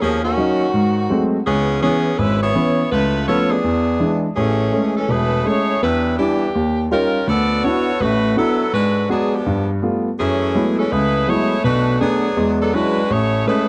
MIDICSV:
0, 0, Header, 1, 3, 480
1, 0, Start_track
1, 0, Tempo, 363416
1, 18, Time_signature, 4, 2, 24, 8
1, 18074, End_track
2, 0, Start_track
2, 0, Title_t, "Saxophone section"
2, 0, Program_c, 0, 65
2, 25, Note_on_c, 0, 58, 84
2, 27, Note_on_c, 0, 53, 85
2, 27, Note_on_c, 0, 61, 87
2, 27, Note_on_c, 0, 68, 93
2, 310, Note_off_c, 0, 58, 0
2, 315, Note_off_c, 0, 53, 0
2, 315, Note_off_c, 0, 61, 0
2, 315, Note_off_c, 0, 68, 0
2, 324, Note_on_c, 0, 51, 83
2, 326, Note_on_c, 0, 58, 76
2, 326, Note_on_c, 0, 66, 94
2, 329, Note_on_c, 0, 61, 85
2, 929, Note_off_c, 0, 58, 0
2, 930, Note_off_c, 0, 61, 0
2, 1713, Note_off_c, 0, 51, 0
2, 1714, Note_off_c, 0, 66, 0
2, 1934, Note_on_c, 0, 59, 86
2, 1937, Note_on_c, 0, 52, 81
2, 1938, Note_on_c, 0, 68, 94
2, 1940, Note_on_c, 0, 61, 81
2, 2380, Note_off_c, 0, 59, 0
2, 2382, Note_off_c, 0, 52, 0
2, 2383, Note_off_c, 0, 68, 0
2, 2384, Note_off_c, 0, 61, 0
2, 2416, Note_on_c, 0, 61, 81
2, 2418, Note_on_c, 0, 68, 95
2, 2419, Note_on_c, 0, 59, 77
2, 2421, Note_on_c, 0, 52, 81
2, 2861, Note_off_c, 0, 61, 0
2, 2862, Note_off_c, 0, 68, 0
2, 2863, Note_off_c, 0, 52, 0
2, 2863, Note_off_c, 0, 59, 0
2, 2886, Note_on_c, 0, 64, 86
2, 2889, Note_on_c, 0, 71, 95
2, 2891, Note_on_c, 0, 61, 84
2, 2892, Note_on_c, 0, 56, 83
2, 3191, Note_off_c, 0, 64, 0
2, 3205, Note_off_c, 0, 71, 0
2, 3206, Note_off_c, 0, 61, 0
2, 3206, Note_on_c, 0, 64, 79
2, 3206, Note_on_c, 0, 68, 79
2, 3207, Note_off_c, 0, 56, 0
2, 3211, Note_on_c, 0, 59, 80
2, 3214, Note_on_c, 0, 73, 94
2, 3806, Note_off_c, 0, 64, 0
2, 3806, Note_off_c, 0, 68, 0
2, 3809, Note_off_c, 0, 59, 0
2, 3811, Note_off_c, 0, 73, 0
2, 3856, Note_on_c, 0, 71, 99
2, 3857, Note_on_c, 0, 57, 80
2, 3858, Note_on_c, 0, 64, 77
2, 3859, Note_on_c, 0, 65, 80
2, 4300, Note_off_c, 0, 71, 0
2, 4301, Note_off_c, 0, 57, 0
2, 4301, Note_off_c, 0, 64, 0
2, 4301, Note_off_c, 0, 65, 0
2, 4333, Note_on_c, 0, 69, 77
2, 4335, Note_on_c, 0, 73, 88
2, 4336, Note_on_c, 0, 65, 72
2, 4338, Note_on_c, 0, 59, 76
2, 4624, Note_off_c, 0, 69, 0
2, 4625, Note_off_c, 0, 73, 0
2, 4626, Note_off_c, 0, 65, 0
2, 4627, Note_off_c, 0, 59, 0
2, 4635, Note_on_c, 0, 62, 66
2, 4637, Note_on_c, 0, 52, 65
2, 4642, Note_on_c, 0, 68, 75
2, 4643, Note_on_c, 0, 59, 64
2, 5599, Note_off_c, 0, 62, 0
2, 5600, Note_off_c, 0, 52, 0
2, 5602, Note_off_c, 0, 68, 0
2, 5603, Note_off_c, 0, 59, 0
2, 5761, Note_on_c, 0, 57, 70
2, 5763, Note_on_c, 0, 61, 75
2, 5764, Note_on_c, 0, 52, 73
2, 5764, Note_on_c, 0, 68, 80
2, 6506, Note_off_c, 0, 57, 0
2, 6507, Note_off_c, 0, 52, 0
2, 6507, Note_off_c, 0, 61, 0
2, 6507, Note_off_c, 0, 68, 0
2, 6564, Note_on_c, 0, 61, 66
2, 6565, Note_on_c, 0, 52, 68
2, 6567, Note_on_c, 0, 56, 69
2, 6567, Note_on_c, 0, 69, 70
2, 6729, Note_off_c, 0, 61, 0
2, 6730, Note_off_c, 0, 52, 0
2, 6731, Note_off_c, 0, 56, 0
2, 6731, Note_off_c, 0, 69, 0
2, 6742, Note_on_c, 0, 57, 80
2, 6742, Note_on_c, 0, 68, 78
2, 6743, Note_on_c, 0, 64, 80
2, 6746, Note_on_c, 0, 71, 90
2, 7202, Note_off_c, 0, 68, 0
2, 7203, Note_off_c, 0, 57, 0
2, 7204, Note_off_c, 0, 64, 0
2, 7217, Note_off_c, 0, 71, 0
2, 7218, Note_on_c, 0, 68, 77
2, 7219, Note_on_c, 0, 57, 80
2, 7220, Note_on_c, 0, 64, 80
2, 7223, Note_on_c, 0, 73, 89
2, 7693, Note_off_c, 0, 57, 0
2, 7693, Note_off_c, 0, 68, 0
2, 7694, Note_off_c, 0, 64, 0
2, 7696, Note_off_c, 0, 73, 0
2, 7706, Note_on_c, 0, 55, 76
2, 7707, Note_on_c, 0, 64, 85
2, 7707, Note_on_c, 0, 71, 95
2, 7709, Note_on_c, 0, 62, 84
2, 8144, Note_off_c, 0, 55, 0
2, 8144, Note_off_c, 0, 71, 0
2, 8145, Note_off_c, 0, 64, 0
2, 8146, Note_off_c, 0, 62, 0
2, 8170, Note_on_c, 0, 52, 73
2, 8170, Note_on_c, 0, 67, 85
2, 8172, Note_on_c, 0, 59, 70
2, 8173, Note_on_c, 0, 62, 70
2, 8616, Note_off_c, 0, 52, 0
2, 8616, Note_off_c, 0, 59, 0
2, 8617, Note_off_c, 0, 62, 0
2, 9076, Note_off_c, 0, 67, 0
2, 9142, Note_on_c, 0, 55, 83
2, 9143, Note_on_c, 0, 61, 82
2, 9143, Note_on_c, 0, 65, 83
2, 9146, Note_on_c, 0, 70, 95
2, 9582, Note_off_c, 0, 55, 0
2, 9583, Note_off_c, 0, 61, 0
2, 9583, Note_off_c, 0, 65, 0
2, 9584, Note_off_c, 0, 70, 0
2, 9627, Note_on_c, 0, 74, 106
2, 9628, Note_on_c, 0, 66, 96
2, 9630, Note_on_c, 0, 59, 92
2, 9633, Note_on_c, 0, 69, 89
2, 10078, Note_off_c, 0, 66, 0
2, 10081, Note_off_c, 0, 59, 0
2, 10081, Note_off_c, 0, 69, 0
2, 10094, Note_on_c, 0, 66, 86
2, 10097, Note_on_c, 0, 59, 82
2, 10097, Note_on_c, 0, 69, 85
2, 10098, Note_off_c, 0, 74, 0
2, 10100, Note_on_c, 0, 73, 98
2, 10567, Note_off_c, 0, 66, 0
2, 10573, Note_off_c, 0, 59, 0
2, 10573, Note_off_c, 0, 69, 0
2, 10574, Note_off_c, 0, 73, 0
2, 10578, Note_on_c, 0, 64, 81
2, 10581, Note_on_c, 0, 71, 100
2, 10582, Note_on_c, 0, 57, 82
2, 10583, Note_on_c, 0, 66, 85
2, 11054, Note_off_c, 0, 64, 0
2, 11055, Note_off_c, 0, 71, 0
2, 11056, Note_off_c, 0, 57, 0
2, 11056, Note_off_c, 0, 66, 0
2, 11074, Note_on_c, 0, 69, 91
2, 11076, Note_on_c, 0, 54, 80
2, 11078, Note_on_c, 0, 59, 72
2, 11078, Note_on_c, 0, 64, 73
2, 11509, Note_off_c, 0, 69, 0
2, 11510, Note_off_c, 0, 54, 0
2, 11511, Note_off_c, 0, 59, 0
2, 11511, Note_off_c, 0, 64, 0
2, 11545, Note_on_c, 0, 66, 83
2, 11546, Note_on_c, 0, 62, 84
2, 11547, Note_on_c, 0, 71, 96
2, 11549, Note_on_c, 0, 56, 82
2, 11985, Note_off_c, 0, 62, 0
2, 11985, Note_off_c, 0, 66, 0
2, 11986, Note_off_c, 0, 56, 0
2, 11986, Note_off_c, 0, 71, 0
2, 12035, Note_on_c, 0, 68, 80
2, 12038, Note_on_c, 0, 54, 71
2, 12038, Note_on_c, 0, 59, 73
2, 12040, Note_on_c, 0, 62, 73
2, 12337, Note_off_c, 0, 68, 0
2, 12338, Note_off_c, 0, 54, 0
2, 12339, Note_off_c, 0, 59, 0
2, 12339, Note_off_c, 0, 62, 0
2, 12357, Note_on_c, 0, 53, 59
2, 12358, Note_on_c, 0, 62, 61
2, 12359, Note_on_c, 0, 67, 68
2, 12360, Note_on_c, 0, 59, 62
2, 12821, Note_off_c, 0, 53, 0
2, 12822, Note_off_c, 0, 59, 0
2, 12822, Note_off_c, 0, 62, 0
2, 12822, Note_off_c, 0, 67, 0
2, 13467, Note_on_c, 0, 61, 80
2, 13468, Note_on_c, 0, 57, 79
2, 13469, Note_on_c, 0, 52, 76
2, 13471, Note_on_c, 0, 68, 91
2, 14202, Note_off_c, 0, 61, 0
2, 14203, Note_off_c, 0, 52, 0
2, 14203, Note_off_c, 0, 57, 0
2, 14204, Note_off_c, 0, 68, 0
2, 14253, Note_on_c, 0, 61, 72
2, 14254, Note_on_c, 0, 52, 71
2, 14254, Note_on_c, 0, 69, 80
2, 14256, Note_on_c, 0, 56, 71
2, 14416, Note_off_c, 0, 61, 0
2, 14417, Note_off_c, 0, 52, 0
2, 14417, Note_off_c, 0, 69, 0
2, 14418, Note_off_c, 0, 56, 0
2, 14423, Note_on_c, 0, 64, 87
2, 14424, Note_on_c, 0, 57, 82
2, 14427, Note_on_c, 0, 68, 86
2, 14429, Note_on_c, 0, 71, 103
2, 14891, Note_off_c, 0, 68, 0
2, 14895, Note_off_c, 0, 57, 0
2, 14899, Note_off_c, 0, 64, 0
2, 14902, Note_off_c, 0, 71, 0
2, 14907, Note_on_c, 0, 68, 87
2, 14909, Note_on_c, 0, 73, 99
2, 14911, Note_on_c, 0, 57, 87
2, 14913, Note_on_c, 0, 64, 87
2, 15365, Note_off_c, 0, 57, 0
2, 15381, Note_on_c, 0, 57, 92
2, 15381, Note_on_c, 0, 71, 99
2, 15382, Note_off_c, 0, 68, 0
2, 15383, Note_off_c, 0, 73, 0
2, 15383, Note_on_c, 0, 62, 88
2, 15385, Note_off_c, 0, 64, 0
2, 15387, Note_on_c, 0, 66, 85
2, 15826, Note_off_c, 0, 57, 0
2, 15826, Note_off_c, 0, 71, 0
2, 15827, Note_off_c, 0, 62, 0
2, 15829, Note_off_c, 0, 66, 0
2, 15862, Note_on_c, 0, 62, 75
2, 15864, Note_on_c, 0, 54, 76
2, 15867, Note_on_c, 0, 68, 88
2, 15868, Note_on_c, 0, 59, 78
2, 16603, Note_off_c, 0, 62, 0
2, 16604, Note_off_c, 0, 54, 0
2, 16605, Note_off_c, 0, 68, 0
2, 16606, Note_off_c, 0, 59, 0
2, 16665, Note_on_c, 0, 62, 69
2, 16669, Note_on_c, 0, 54, 71
2, 16670, Note_on_c, 0, 69, 80
2, 16671, Note_on_c, 0, 59, 71
2, 16814, Note_off_c, 0, 62, 0
2, 16823, Note_on_c, 0, 66, 80
2, 16827, Note_off_c, 0, 54, 0
2, 16828, Note_off_c, 0, 59, 0
2, 16828, Note_off_c, 0, 69, 0
2, 16828, Note_on_c, 0, 71, 94
2, 16829, Note_on_c, 0, 56, 81
2, 16830, Note_on_c, 0, 62, 79
2, 17303, Note_off_c, 0, 66, 0
2, 17305, Note_off_c, 0, 71, 0
2, 17306, Note_off_c, 0, 56, 0
2, 17306, Note_off_c, 0, 62, 0
2, 17334, Note_on_c, 0, 57, 92
2, 17335, Note_on_c, 0, 68, 93
2, 17335, Note_on_c, 0, 73, 99
2, 17340, Note_on_c, 0, 64, 90
2, 17789, Note_off_c, 0, 64, 0
2, 17789, Note_off_c, 0, 68, 0
2, 17791, Note_off_c, 0, 57, 0
2, 17800, Note_off_c, 0, 73, 0
2, 17805, Note_on_c, 0, 64, 77
2, 17805, Note_on_c, 0, 68, 76
2, 17805, Note_on_c, 0, 71, 86
2, 17807, Note_on_c, 0, 57, 79
2, 18074, Note_off_c, 0, 57, 0
2, 18074, Note_off_c, 0, 64, 0
2, 18074, Note_off_c, 0, 68, 0
2, 18074, Note_off_c, 0, 71, 0
2, 18074, End_track
3, 0, Start_track
3, 0, Title_t, "Grand piano"
3, 0, Program_c, 1, 0
3, 23, Note_on_c, 1, 39, 61
3, 436, Note_off_c, 1, 39, 0
3, 492, Note_on_c, 1, 54, 51
3, 502, Note_on_c, 1, 61, 45
3, 503, Note_on_c, 1, 63, 53
3, 825, Note_off_c, 1, 54, 0
3, 830, Note_off_c, 1, 61, 0
3, 831, Note_off_c, 1, 63, 0
3, 974, Note_on_c, 1, 44, 65
3, 1390, Note_off_c, 1, 44, 0
3, 1451, Note_on_c, 1, 54, 49
3, 1452, Note_on_c, 1, 56, 46
3, 1456, Note_on_c, 1, 57, 47
3, 1467, Note_on_c, 1, 60, 57
3, 1784, Note_off_c, 1, 54, 0
3, 1785, Note_off_c, 1, 56, 0
3, 1786, Note_off_c, 1, 57, 0
3, 1792, Note_off_c, 1, 60, 0
3, 1937, Note_on_c, 1, 37, 64
3, 2351, Note_off_c, 1, 37, 0
3, 2409, Note_on_c, 1, 52, 50
3, 2416, Note_on_c, 1, 59, 47
3, 2423, Note_on_c, 1, 61, 55
3, 2742, Note_off_c, 1, 52, 0
3, 2745, Note_off_c, 1, 59, 0
3, 2749, Note_off_c, 1, 61, 0
3, 2886, Note_on_c, 1, 32, 66
3, 3304, Note_off_c, 1, 32, 0
3, 3369, Note_on_c, 1, 52, 50
3, 3372, Note_on_c, 1, 59, 47
3, 3379, Note_on_c, 1, 61, 54
3, 3701, Note_off_c, 1, 52, 0
3, 3703, Note_off_c, 1, 59, 0
3, 3706, Note_off_c, 1, 61, 0
3, 3851, Note_on_c, 1, 37, 63
3, 4266, Note_off_c, 1, 37, 0
3, 4332, Note_on_c, 1, 53, 52
3, 4341, Note_on_c, 1, 57, 45
3, 4341, Note_on_c, 1, 59, 47
3, 4345, Note_on_c, 1, 61, 54
3, 4662, Note_off_c, 1, 53, 0
3, 4666, Note_off_c, 1, 57, 0
3, 4667, Note_off_c, 1, 59, 0
3, 4669, Note_off_c, 1, 61, 0
3, 4806, Note_on_c, 1, 40, 61
3, 5223, Note_off_c, 1, 40, 0
3, 5282, Note_on_c, 1, 52, 46
3, 5286, Note_on_c, 1, 56, 46
3, 5291, Note_on_c, 1, 62, 52
3, 5616, Note_off_c, 1, 52, 0
3, 5619, Note_off_c, 1, 56, 0
3, 5621, Note_off_c, 1, 62, 0
3, 5769, Note_on_c, 1, 33, 56
3, 6184, Note_off_c, 1, 33, 0
3, 6240, Note_on_c, 1, 56, 43
3, 6245, Note_on_c, 1, 57, 44
3, 6251, Note_on_c, 1, 61, 50
3, 6575, Note_off_c, 1, 56, 0
3, 6577, Note_off_c, 1, 57, 0
3, 6581, Note_off_c, 1, 61, 0
3, 6720, Note_on_c, 1, 28, 62
3, 7139, Note_off_c, 1, 28, 0
3, 7195, Note_on_c, 1, 56, 45
3, 7198, Note_on_c, 1, 57, 42
3, 7208, Note_on_c, 1, 61, 50
3, 7532, Note_off_c, 1, 56, 0
3, 7534, Note_off_c, 1, 57, 0
3, 7539, Note_off_c, 1, 61, 0
3, 7689, Note_on_c, 1, 40, 61
3, 8104, Note_off_c, 1, 40, 0
3, 8172, Note_on_c, 1, 55, 46
3, 8177, Note_on_c, 1, 62, 43
3, 8181, Note_on_c, 1, 64, 51
3, 8501, Note_off_c, 1, 55, 0
3, 8503, Note_off_c, 1, 62, 0
3, 8505, Note_off_c, 1, 64, 0
3, 8653, Note_on_c, 1, 39, 64
3, 9066, Note_off_c, 1, 39, 0
3, 9120, Note_on_c, 1, 55, 48
3, 9131, Note_on_c, 1, 61, 43
3, 9135, Note_on_c, 1, 63, 44
3, 9135, Note_on_c, 1, 65, 49
3, 9455, Note_off_c, 1, 55, 0
3, 9460, Note_off_c, 1, 61, 0
3, 9462, Note_off_c, 1, 63, 0
3, 9462, Note_off_c, 1, 65, 0
3, 9607, Note_on_c, 1, 38, 60
3, 10023, Note_off_c, 1, 38, 0
3, 10087, Note_on_c, 1, 59, 48
3, 10095, Note_on_c, 1, 62, 42
3, 10098, Note_on_c, 1, 66, 51
3, 10100, Note_on_c, 1, 64, 43
3, 10419, Note_off_c, 1, 59, 0
3, 10422, Note_off_c, 1, 62, 0
3, 10424, Note_off_c, 1, 66, 0
3, 10425, Note_off_c, 1, 64, 0
3, 10570, Note_on_c, 1, 33, 61
3, 10572, Note_on_c, 1, 45, 60
3, 10985, Note_off_c, 1, 33, 0
3, 10986, Note_off_c, 1, 45, 0
3, 11047, Note_on_c, 1, 59, 48
3, 11048, Note_on_c, 1, 62, 42
3, 11051, Note_on_c, 1, 64, 44
3, 11055, Note_on_c, 1, 66, 54
3, 11379, Note_off_c, 1, 59, 0
3, 11380, Note_off_c, 1, 62, 0
3, 11381, Note_off_c, 1, 64, 0
3, 11383, Note_off_c, 1, 66, 0
3, 11533, Note_on_c, 1, 44, 61
3, 11947, Note_off_c, 1, 44, 0
3, 12007, Note_on_c, 1, 56, 46
3, 12015, Note_on_c, 1, 59, 44
3, 12019, Note_on_c, 1, 66, 55
3, 12340, Note_off_c, 1, 56, 0
3, 12343, Note_off_c, 1, 59, 0
3, 12345, Note_off_c, 1, 66, 0
3, 12499, Note_on_c, 1, 43, 65
3, 12911, Note_off_c, 1, 43, 0
3, 12970, Note_on_c, 1, 55, 45
3, 12973, Note_on_c, 1, 57, 41
3, 12980, Note_on_c, 1, 59, 40
3, 12985, Note_on_c, 1, 65, 50
3, 13302, Note_off_c, 1, 55, 0
3, 13303, Note_off_c, 1, 57, 0
3, 13307, Note_off_c, 1, 59, 0
3, 13309, Note_off_c, 1, 65, 0
3, 13468, Note_on_c, 1, 42, 59
3, 13876, Note_off_c, 1, 42, 0
3, 13934, Note_on_c, 1, 54, 47
3, 13936, Note_on_c, 1, 56, 43
3, 13943, Note_on_c, 1, 57, 43
3, 13943, Note_on_c, 1, 59, 44
3, 13948, Note_on_c, 1, 64, 50
3, 14264, Note_off_c, 1, 54, 0
3, 14266, Note_off_c, 1, 56, 0
3, 14269, Note_off_c, 1, 57, 0
3, 14269, Note_off_c, 1, 59, 0
3, 14272, Note_off_c, 1, 64, 0
3, 14422, Note_on_c, 1, 37, 65
3, 14834, Note_off_c, 1, 37, 0
3, 14893, Note_on_c, 1, 56, 46
3, 14894, Note_on_c, 1, 54, 48
3, 14898, Note_on_c, 1, 59, 43
3, 14900, Note_on_c, 1, 57, 43
3, 14908, Note_on_c, 1, 64, 51
3, 15225, Note_off_c, 1, 56, 0
3, 15226, Note_off_c, 1, 54, 0
3, 15228, Note_off_c, 1, 59, 0
3, 15229, Note_off_c, 1, 57, 0
3, 15233, Note_off_c, 1, 64, 0
3, 15373, Note_on_c, 1, 47, 58
3, 15379, Note_on_c, 1, 35, 57
3, 15791, Note_off_c, 1, 47, 0
3, 15794, Note_off_c, 1, 35, 0
3, 15855, Note_on_c, 1, 57, 46
3, 15858, Note_on_c, 1, 59, 46
3, 15861, Note_on_c, 1, 62, 53
3, 16187, Note_off_c, 1, 57, 0
3, 16189, Note_off_c, 1, 59, 0
3, 16190, Note_off_c, 1, 62, 0
3, 16338, Note_on_c, 1, 40, 65
3, 16339, Note_on_c, 1, 56, 66
3, 16755, Note_off_c, 1, 40, 0
3, 16755, Note_off_c, 1, 56, 0
3, 16818, Note_on_c, 1, 54, 46
3, 16821, Note_on_c, 1, 56, 42
3, 16823, Note_on_c, 1, 61, 44
3, 16827, Note_on_c, 1, 62, 43
3, 16827, Note_on_c, 1, 64, 53
3, 17150, Note_off_c, 1, 54, 0
3, 17152, Note_off_c, 1, 56, 0
3, 17153, Note_off_c, 1, 61, 0
3, 17155, Note_off_c, 1, 62, 0
3, 17155, Note_off_c, 1, 64, 0
3, 17304, Note_on_c, 1, 33, 57
3, 17719, Note_off_c, 1, 33, 0
3, 17773, Note_on_c, 1, 56, 49
3, 17774, Note_on_c, 1, 57, 44
3, 17783, Note_on_c, 1, 61, 56
3, 18074, Note_off_c, 1, 56, 0
3, 18074, Note_off_c, 1, 57, 0
3, 18074, Note_off_c, 1, 61, 0
3, 18074, End_track
0, 0, End_of_file